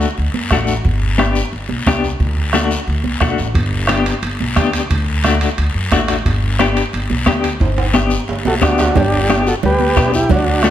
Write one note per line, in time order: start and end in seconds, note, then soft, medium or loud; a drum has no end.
0.01 short guiro medium
0.18 0.31 D2 medium
0.18 long guiro medium
0.34 0.48 F#2 medium
0.34 high conga medium
0.51 0.78 A1 medium
0.51 0.76 A3 medium
0.51 0.76 D4 medium
0.51 0.76 F#4 medium
0.51 bombo low medium
0.51 bombo rim medium
0.51 high conga medium
0.51 short guiro medium
0.67 short guiro medium
0.85 1.39 G1 loud
0.85 bombo low medium
0.85 long guiro medium
1.18 1.42 B3 medium
1.18 1.43 D4 medium
1.18 1.43 G4 medium
1.18 bombo rim medium
1.18 high conga medium
1.18 short guiro medium
1.35 short guiro medium
1.52 1.66 G1 medium
1.52 long guiro medium
1.69 1.83 B1 medium
1.69 high conga medium
1.86 2.13 C2 medium
1.86 2.11 B3 medium
1.86 2.11 D4 medium
1.86 2.11 G4 medium
1.86 bombo low medium
1.86 bombo rim medium
1.86 high conga medium
1.86 short guiro medium
2.04 short guiro medium
2.20 2.74 D2 loud
2.20 bombo low medium
2.20 long guiro medium
2.53 2.78 A3 medium
2.53 2.78 D4 medium
2.53 2.79 F#4 medium
2.53 bombo rim medium
2.53 high conga medium
2.53 short guiro medium
2.71 short guiro medium
2.87 3.01 D2 medium
2.87 long guiro medium
3.04 3.20 C2 medium
3.04 high conga medium
3.21 3.37 B1 medium
3.21 3.46 A3 medium
3.21 3.46 D4 medium
3.21 3.46 F#4 loud
3.21 bombo low medium
3.21 bombo rim medium
3.21 high conga medium
3.21 short guiro medium
3.38 3.54 A1 medium
3.38 short guiro medium
3.54 4.09 G1 loud
3.54 bombo low medium
3.54 high timbale medium
3.54 long guiro medium
3.87 4.13 B3 medium
3.87 4.13 D4 medium
3.87 4.13 G4 medium
3.87 bombo rim medium
3.87 high conga medium
3.87 high timbale medium
3.87 short guiro medium
4.06 high timbale medium
4.06 short guiro medium
4.23 4.36 G1 medium
4.23 high timbale medium
4.23 long guiro medium
4.40 4.54 B1 medium
4.40 high conga medium
4.56 4.84 D2 medium
4.56 4.80 B3 medium
4.56 4.81 D4 medium
4.56 4.81 G4 medium
4.56 bombo low medium
4.56 bombo rim medium
4.56 high conga medium
4.56 high timbale medium
4.56 low timbale medium
4.56 short guiro medium
4.73 high timbale medium
4.73 short guiro medium
4.90 5.45 D2 loud
4.90 bombo low medium
4.90 high timbale medium
4.90 long guiro medium
5.24 5.48 A3 medium
5.24 5.48 D4 medium
5.24 5.49 F#4 medium
5.24 bombo rim medium
5.24 high conga medium
5.24 high timbale medium
5.24 short guiro medium
5.41 high timbale medium
5.41 short guiro medium
5.58 5.72 D2 medium
5.58 high timbale medium
5.58 long guiro medium
5.75 5.89 F#2 medium
5.92 6.19 A1 medium
5.92 6.16 A3 medium
5.92 6.16 D4 medium
5.92 6.16 F#4 medium
5.92 bombo low medium
5.92 bombo rim medium
5.92 high conga medium
5.92 high timbale medium
5.92 short guiro medium
6.08 bombo rim medium
6.08 high timbale medium
6.08 short guiro medium
6.25 6.80 G1 loud
6.25 bombo low medium
6.25 high timbale medium
6.25 long guiro medium
6.59 6.83 B3 medium
6.59 6.84 D4 medium
6.59 6.84 G4 medium
6.59 bombo rim medium
6.59 high conga medium
6.59 high timbale medium
6.59 short guiro medium
6.76 high timbale medium
6.76 short guiro medium
6.93 7.07 G1 medium
6.93 high timbale medium
6.93 long guiro medium
7.10 7.24 B1 medium
7.10 high conga medium
7.26 7.54 D2 medium
7.26 7.50 B3 medium
7.26 7.51 D4 medium
7.26 7.51 G4 medium
7.26 bombo low medium
7.26 bombo rim medium
7.26 high conga medium
7.26 high timbale medium
7.26 low timbale medium
7.26 short guiro medium
7.44 high timbale medium
7.44 short guiro medium
7.60 8.15 G1 loud
7.60 bombo low medium
7.60 high timbale medium
7.60 long guiro medium
7.78 high timbale medium
7.94 8.18 B3 medium
7.94 8.18 D4 medium
7.94 8.18 G4 medium
7.94 bombo rim medium
7.94 high conga medium
7.94 short guiro medium
8.10 short guiro medium
8.28 8.42 G1 medium
8.28 low timbale medium
8.28 long guiro medium
8.45 8.59 B1 medium
8.45 8.54 F#4 medium
8.45 8.55 A4 medium
8.45 high conga medium
8.45 low timbale medium
8.61 8.89 D2 medium
8.61 8.86 B3 medium
8.61 8.86 D4 medium
8.61 8.94 D4 medium
8.61 8.98 F#4 medium
8.61 8.86 G4 medium
8.61 bombo low medium
8.61 bombo rim medium
8.61 high conga medium
8.61 low timbale medium
8.61 short guiro medium
8.78 bombo rim medium
8.78 low timbale medium
8.78 short guiro medium
8.95 9.50 G1 loud
8.95 9.43 D4 medium
8.95 9.43 G4 medium
8.95 bombo low medium
8.95 cowbell loud
8.95 low conga medium
8.95 long guiro medium
9.29 9.53 B3 medium
9.29 9.53 D4 medium
9.29 9.54 G4 medium
9.29 bombo rim medium
9.29 cowbell medium
9.29 high conga medium
9.29 short guiro medium
9.47 9.54 F#4 medium
9.47 9.55 A4 medium
9.47 short guiro medium
9.63 9.90 D2 loud
9.63 10.12 G4 medium
9.63 10.12 B4 medium
9.63 cowbell medium
9.63 low conga medium
9.63 long guiro medium
9.80 high conga medium
9.97 10.24 B1 loud
9.97 10.21 B3 medium
9.97 10.21 D4 medium
9.97 10.21 G4 medium
9.97 bombo low medium
9.97 bombo rim medium
9.97 cowbell medium
9.97 high conga medium
9.97 low timbale medium
9.97 short guiro medium
10.14 10.30 E4 medium
10.14 10.31 G4 medium
10.14 short guiro medium
10.30 10.70 D2 loud
10.30 10.63 D4 medium
10.30 10.63 F#4 medium
10.30 bombo low medium
10.30 cowbell loud
10.30 low conga medium
10.30 long guiro medium
10.63 10.70 A3 medium
10.63 10.70 D4 medium
10.63 10.70 F#4 medium
10.63 bombo rim medium
10.63 cowbell medium
10.63 high conga medium
10.63 short guiro medium